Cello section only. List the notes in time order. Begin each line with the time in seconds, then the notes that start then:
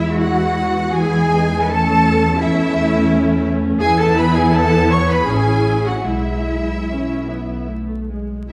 Already playing: E4
0.19 F#4
0.95 G#4
1.63 B4
1.70 A4
2.41 E4
3.80 G#4
3.99 A4
4.16 B4
4.36 G#4
4.54 A4
4.91 C#5
5.11 B4
5.27 G#4
5.85 F#4
6.05 E4